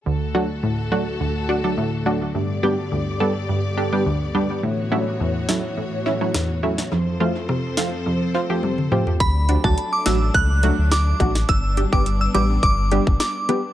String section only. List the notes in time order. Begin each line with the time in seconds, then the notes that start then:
0.06 D2 D3 A3 F#4 A4
2.34 G2 B3 G4 D5
4.63 A2 E3 F#4 C#5
6.92 F2 F3 C4 A4 C5
9.20 F#3 A3 D4
11.49 G3 B3